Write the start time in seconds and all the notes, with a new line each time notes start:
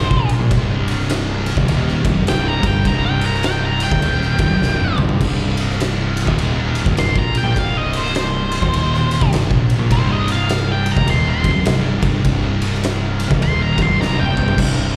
Already playing: C5
0.10 A#1 A#2, kick
0.29 ride
0.39 A#1 A#2
0.51 C1 C2, kick, ride
0.88 ride
1.00 snare
1.10 snare, ride
1.46 ride
1.57 D#1 D#2, kick
1.68 D#1 D#2, ride
1.88 snare
2.04 C1 C2, kick, ride
2.15 F#1 F#2
2.26 C1 C2 G5, snare, ride
2.48 A#5
2.63 G1 G2, kick, ride
2.67 G5
2.85 C1 C2 A#5, kick, ride
3.06 G5
3.21 ride
3.26 A#5
3.34 snare
3.43 G5, snare, ride
3.65 A#5
3.80 G5, ride
3.91 D#1 D#2, kick
4.02 D#1 D#2, ride
4.22 snare
4.38 C1 C2, kick, ride
4.50 F#1 F#2
4.61 C1 C2, snare
4.80 high tom
4.97 G1 G2, mid tom
5.09 floor tom
5.21 C1 C2, kick, crash
5.57 ride
5.70 snare
5.80 snare, ride
6.17 ride
6.27 D#1 D#2, kick
6.38 ride
6.75 ride
6.86 C1 C2, kick
6.97 C6, snare, ride
7.15 A#1 A#2, kick
7.19 A#5
7.35 G5, ride
7.43 A#1 A#2
7.54 C1 C2, kick, ride
7.59 F5
7.77 D#5
7.93 C5, ride
8.06 snare
8.15 C5, snare, ride
8.52 ride
8.62 D#1 D#2, kick
8.74 ride
8.94 snare
9.11 ride
9.21 C1 C2, kick
9.33 snare, ride
9.50 A#1 A#2, kick
9.70 ride
9.79 A#1 A#2
9.90 C1 C2 C5, kick, ride
10.12 D#5
10.28 F5, ride
10.49 snare, ride
10.72 G5
10.86 ride
10.91 A#5
10.96 D#1 D#2, kick
11.06 D#1 D#2, ride
11.10 C6
11.30 C6
11.44 C1 C2, kick, ride
11.54 F#1 F#2
11.64 C1 C2, snare, ride
12.02 G1 G2, kick, ride
12.24 C1 C2, kick, ride
12.62 ride
12.74 snare
12.84 snare, ride
13.20 ride
13.31 D#1 D#2, kick
13.40 D#1 D#2 C6, ride
13.62 A#5
13.78 C1 C2, kick, ride
13.82 C6
13.88 F#1 F#2
13.99 C1 C2 A#5, snare
14.19 G5, high tom
14.35 G1 G2, mid tom
14.48 floor tom
14.58 C1 C2, kick, crash